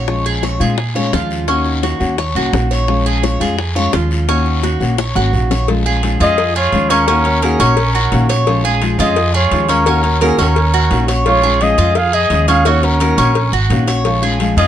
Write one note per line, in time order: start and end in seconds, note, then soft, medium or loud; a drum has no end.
0.00 0.55 A#1 medium
0.00 0.25 C#5 medium
0.08 0.60 F3 medium
0.08 0.60 G#3 medium
0.08 0.61 C#4 medium
0.08 0.59 F4 medium
0.08 high bongo medium
0.08 long guiro medium
0.26 0.43 G#4 medium
0.26 high bongo soft
0.43 0.60 C#5 medium
0.43 high bongo medium
0.43 short guiro medium
0.60 1.09 A#2 medium
0.60 0.77 G#3 medium
0.60 0.77 C#4 medium
0.60 0.77 F4 medium
0.60 0.95 G#4 medium
0.60 high bongo soft
0.60 short guiro medium
0.78 high bongo medium
0.78 long guiro medium
0.95 1.12 G#3 medium
0.95 1.13 C#4 medium
0.95 1.12 F4 medium
0.95 1.13 C#5 medium
1.12 1.95 D#2 medium
1.12 1.47 F3 soft
1.12 1.48 G#3 soft
1.12 1.48 F4 medium
1.12 1.48 F4 soft
1.12 high bongo medium
1.12 low bongo medium
1.12 short guiro medium
1.31 high bongo soft
1.31 short guiro medium
1.47 2.00 D#3 medium
1.47 2.02 A#3 medium
1.47 1.82 C#4 medium
1.47 2.01 C#4 medium
1.47 1.99 F#4 medium
1.47 high bongo medium
1.47 long guiro medium
1.66 high bongo soft
1.83 2.17 F#4 medium
1.83 high bongo medium
1.83 short guiro medium
2.00 2.33 D#2 medium
2.00 2.17 A#3 medium
2.00 2.17 C#4 medium
2.00 2.17 F#4 medium
2.00 high bongo soft
2.00 short guiro medium
2.18 2.36 C#5 medium
2.18 muted nylon-string guitar stroke medium
2.18 high bongo medium
2.18 long guiro medium
2.35 2.52 C2 medium
2.35 2.52 A#3 medium
2.35 2.53 C#4 medium
2.35 2.53 F#4 medium
2.35 2.70 F#4 medium
2.53 3.35 A#1 medium
2.53 2.87 D#3 soft
2.53 2.88 A#3 soft
2.53 2.88 C#4 soft
2.53 2.88 F#4 soft
2.53 high bongo medium
2.53 low bongo medium
2.53 short guiro medium
2.71 3.05 C#5 medium
2.71 high bongo soft
2.71 short guiro medium
2.88 3.40 F3 medium
2.88 3.40 G#3 medium
2.88 3.41 C#4 medium
2.88 3.39 F4 medium
2.88 high bongo medium
2.88 long guiro medium
3.06 3.23 G#4 medium
3.06 high bongo soft
3.23 3.40 C#5 medium
3.23 high bongo medium
3.23 short guiro medium
3.40 3.89 F2 medium
3.40 3.57 G#3 medium
3.40 3.58 C#4 medium
3.40 3.57 F4 medium
3.40 3.75 G#4 medium
3.40 high bongo soft
3.40 short guiro medium
3.58 muted nylon-string guitar stroke medium
3.58 high bongo medium
3.58 long guiro medium
3.75 3.92 G#3 medium
3.75 3.93 C#4 medium
3.75 3.92 F4 medium
3.75 3.93 C#5 medium
3.93 4.75 D#2 medium
3.93 4.27 F3 soft
3.93 4.28 G#3 soft
3.93 4.28 C#4 soft
3.93 4.27 F4 medium
3.93 4.28 F4 medium
3.93 high bongo medium
3.93 low bongo medium
3.93 short guiro medium
4.11 high bongo soft
4.11 short guiro medium
4.28 4.80 D#3 medium
4.28 4.80 A#3 medium
4.28 4.63 C#4 medium
4.28 4.80 C#4 medium
4.28 4.79 F#4 medium
4.28 high bongo medium
4.28 long guiro medium
4.46 high bongo soft
4.63 4.98 F#4 medium
4.63 high bongo medium
4.63 short guiro medium
4.80 5.13 A#1 medium
4.80 4.97 A#3 medium
4.80 4.98 C#4 medium
4.80 4.97 F#4 medium
4.80 high bongo soft
4.80 short guiro medium
4.98 5.16 C#5 medium
4.98 muted nylon-string guitar stroke medium
4.98 high bongo medium
4.98 long guiro medium
5.15 5.32 G#1 medium
5.15 5.32 A#3 medium
5.15 5.33 C#4 medium
5.15 5.32 F#4 medium
5.15 5.50 F#4 medium
5.15 low bongo medium
5.33 6.15 A#1 medium
5.33 5.67 D#3 soft
5.33 5.68 A#3 soft
5.33 5.68 C#4 medium
5.33 5.68 F#4 soft
5.33 short guiro medium
5.51 5.68 C#5 medium
5.51 low bongo medium
5.51 short guiro medium
5.68 5.85 F3 medium
5.68 5.85 G#3 medium
5.68 5.85 C#4 medium
5.68 5.84 F4 medium
5.68 cowbell loud
5.68 long guiro medium
5.85 6.02 G#3 soft
5.85 6.03 C#4 soft
5.85 6.02 F4 soft
5.85 6.20 G#4 medium
6.03 6.20 F3 medium
6.03 6.20 G#3 medium
6.03 6.20 C#4 medium
6.03 6.18 F4 medium
6.03 cowbell medium
6.03 short guiro medium
6.20 6.69 F2 loud
6.20 6.37 G#3 soft
6.20 6.37 C#4 soft
6.20 6.37 F4 medium
6.20 6.54 F4 medium
6.20 6.53 G#4 medium
6.20 6.54 D#5 loud
6.20 cowbell medium
6.20 short guiro medium
6.38 muted nylon-string guitar stroke medium
6.38 cowbell loud
6.38 long guiro medium
6.56 6.91 F4 loud
6.56 6.90 G#4 medium
6.56 6.93 C#5 loud
6.72 7.54 D#2 medium
6.72 6.90 F3 medium
6.72 6.90 G#3 medium
6.72 6.90 C#4 medium
6.72 6.89 F4 medium
6.72 cowbell medium
6.72 short guiro medium
6.90 7.08 G#3 soft
6.90 7.43 C#4 medium
6.90 7.07 C#4 medium
6.90 7.07 C#4 soft
6.90 7.07 F4 soft
6.90 7.46 A#4 loud
6.90 cowbell medium
6.90 short guiro medium
7.07 7.24 D#3 medium
7.07 7.25 A#3 medium
7.07 7.42 C#4 medium
7.07 7.25 C#4 medium
7.07 7.24 F#4 medium
7.07 cowbell loud
7.07 long guiro medium
7.25 7.42 A#3 soft
7.25 7.42 C#4 soft
7.25 7.42 F#4 soft
7.25 cowbell medium
7.42 7.59 D#3 medium
7.42 7.59 A#3 medium
7.42 7.60 C#4 medium
7.42 7.59 C#4 medium
7.42 7.58 F#4 medium
7.42 7.64 G#4 medium
7.42 7.60 A#4 medium
7.42 cowbell medium
7.42 short guiro medium
7.59 8.08 A#1 medium
7.59 7.76 A#3 soft
7.59 7.94 C#4 medium
7.59 8.30 C#4 medium
7.59 7.77 C#4 medium
7.59 7.76 F#4 medium
7.59 8.31 A#4 medium
7.59 short guiro medium
7.77 muted nylon-string guitar stroke medium
7.77 cowbell loud
7.77 long guiro medium
7.95 8.29 F#4 medium
8.11 8.94 A#1 loud
8.11 8.29 D#3 medium
8.11 8.29 A#3 medium
8.11 8.29 C#4 medium
8.11 8.28 F#4 medium
8.11 cowbell medium
8.11 short guiro medium
8.29 8.47 A#3 soft
8.29 8.47 C#4 soft
8.29 8.46 F#4 medium
8.29 8.63 C#5 medium
8.29 cowbell medium
8.29 short guiro medium
8.46 8.64 F3 medium
8.46 8.64 G#3 medium
8.46 8.64 C#4 medium
8.46 8.63 F4 medium
8.46 cowbell loud
8.46 long guiro medium
8.64 8.81 G#3 soft
8.64 8.82 C#4 soft
8.64 8.81 F4 soft
8.64 8.98 G#4 medium
8.82 8.99 F3 medium
8.82 8.99 G#3 medium
8.82 8.99 C#4 medium
8.82 8.98 F4 medium
8.82 cowbell medium
8.82 short guiro medium
8.98 9.48 F2 loud
8.98 9.16 G#3 soft
8.98 9.16 C#4 medium
8.98 9.16 F4 medium
8.98 9.33 F4 medium
8.98 9.32 G#4 medium
8.98 9.33 D#5 loud
8.98 cowbell medium
8.98 short guiro medium
9.16 muted nylon-string guitar stroke medium
9.16 cowbell loud
9.16 long guiro medium
9.34 9.71 F4 medium
9.34 9.68 G#4 medium
9.34 9.72 C#5 loud
9.51 10.33 D#2 loud
9.51 9.68 F3 medium
9.51 9.69 G#3 medium
9.51 9.68 C#4 medium
9.51 9.67 F4 medium
9.51 cowbell medium
9.51 short guiro medium
9.68 9.86 G#3 soft
9.68 9.86 C#4 medium
9.68 9.86 C#4 soft
9.68 10.22 C#4 medium
9.68 9.86 F4 soft
9.68 10.22 A#4 loud
9.68 cowbell medium
9.68 short guiro medium
9.86 10.03 D#3 medium
9.86 10.03 A#3 medium
9.86 10.21 C#4 medium
9.86 10.04 C#4 medium
9.86 10.02 F#4 medium
9.86 cowbell loud
9.86 long guiro medium
10.04 10.20 A#3 soft
10.04 10.21 C#4 soft
10.04 10.21 F#4 soft
10.04 cowbell medium
10.21 10.38 D#3 medium
10.21 10.38 A#3 medium
10.21 10.38 C#4 medium
10.21 10.37 F#4 medium
10.21 10.38 G#4 medium
10.21 10.38 A#4 medium
10.21 cowbell medium
10.21 short guiro medium
10.38 10.87 D#2 medium
10.38 10.56 A#3 soft
10.38 10.73 C#4 medium
10.38 10.56 C#4 soft
10.38 11.05 C#4 medium
10.38 10.55 F#4 soft
10.38 11.05 A#4 medium
10.38 short guiro medium
10.56 muted nylon-string guitar stroke medium
10.56 cowbell loud
10.56 long guiro medium
10.74 11.08 F#4 medium
10.90 11.72 A#1 medium
10.90 11.08 D#3 medium
10.90 11.08 A#3 medium
10.90 11.08 C#4 medium
10.90 11.07 F#4 medium
10.90 cowbell medium
10.90 short guiro medium
11.08 11.26 A#3 soft
11.08 11.26 C#4 soft
11.08 11.25 F#4 soft
11.08 11.42 C#5 medium
11.08 cowbell medium
11.08 short guiro medium
11.26 11.43 F3 medium
11.26 11.43 G#3 medium
11.26 11.43 C#4 medium
11.26 11.63 F4 loud
11.26 11.42 F4 medium
11.26 11.64 C#5 loud
11.26 cowbell loud
11.26 long guiro medium
11.43 11.60 G#3 soft
11.43 11.61 C#4 soft
11.43 11.60 F4 soft
11.43 11.77 G#4 medium
11.61 11.77 F3 medium
11.61 11.78 G#3 medium
11.61 11.78 C#4 medium
11.61 11.77 F4 medium
11.61 11.96 G#4 medium
11.61 11.98 D#5 loud
11.61 cowbell medium
11.61 short guiro medium
11.78 12.27 F2 medium
11.78 11.95 G#3 soft
11.78 11.95 F4 soft
11.78 12.12 F4 medium
11.78 cowbell medium
11.78 short guiro medium
11.95 12.14 G#4 loud
11.95 12.15 F5 loud
11.95 muted nylon-string guitar stroke medium
11.95 cowbell loud
11.95 long guiro medium
12.13 12.47 G#4 medium
12.13 12.48 G#4 loud
12.13 12.48 D#5 loud
12.30 13.12 D#2 medium
12.30 12.47 F3 medium
12.30 12.48 G#3 medium
12.30 12.48 C#4 medium
12.30 12.47 F4 medium
12.30 cowbell medium
12.30 short guiro medium
12.48 12.66 G#3 soft
12.48 12.65 C#4 medium
12.48 12.65 C#4 soft
12.48 12.65 F4 medium
12.48 12.67 G#4 medium
12.48 12.69 F5 loud
12.48 cowbell medium
12.48 short guiro medium
12.65 12.82 D#3 medium
12.65 12.82 A#3 medium
12.65 12.99 C#4 medium
12.65 12.83 C#4 medium
12.65 12.85 F#4 medium
12.65 12.81 F#4 medium
12.65 12.86 C#5 loud
12.65 cowbell loud
12.65 long guiro medium
12.83 12.99 A#3 soft
12.83 13.53 C#4 medium
12.83 13.00 C#4 soft
12.83 13.00 F#4 medium
12.83 13.53 A#4 loud
12.83 cowbell medium
13.00 13.17 D#3 medium
13.00 13.17 A#3 medium
13.00 13.17 C#4 medium
13.00 13.16 F#4 medium
13.00 13.18 A#4 medium
13.00 cowbell medium
13.00 short guiro medium
13.17 13.50 A#1 loud
13.17 13.34 A#3 soft
13.17 13.52 C#4 medium
13.17 13.34 C#4 soft
13.17 13.34 F#4 medium
13.17 short guiro medium
13.35 muted nylon-string guitar stroke medium
13.35 cowbell loud
13.35 long guiro medium
13.52 13.69 G#1 medium
13.52 13.87 F#4 medium
13.70 14.51 A#1 medium
13.70 13.87 D#3 medium
13.70 13.87 A#3 medium
13.70 13.87 C#4 medium
13.70 13.86 F#4 medium
13.70 cowbell medium
13.70 short guiro medium
13.87 14.05 A#3 soft
13.87 14.05 C#4 soft
13.87 14.04 F#4 medium
13.87 14.21 C#5 medium
13.87 cowbell medium
13.87 short guiro medium
14.05 14.22 F3 medium
14.05 14.22 G#3 medium
14.05 14.22 C#4 medium
14.05 14.21 F4 medium
14.05 cowbell loud
14.05 long guiro medium
14.22 14.39 G#3 soft
14.22 14.40 C#4 soft
14.22 14.39 F4 soft
14.22 14.56 G#4 medium
14.40 14.57 F3 medium
14.40 14.57 G#3 medium
14.40 14.57 C#4 medium
14.40 14.56 F4 medium
14.40 cowbell medium
14.40 short guiro medium
14.57 14.67 F2 medium
14.57 14.67 G#3 soft
14.57 14.67 C#4 soft
14.57 14.67 F4 soft
14.57 14.67 F4 medium
14.57 14.67 G#4 loud
14.57 14.67 D#5 loud
14.57 cowbell medium
14.57 short guiro medium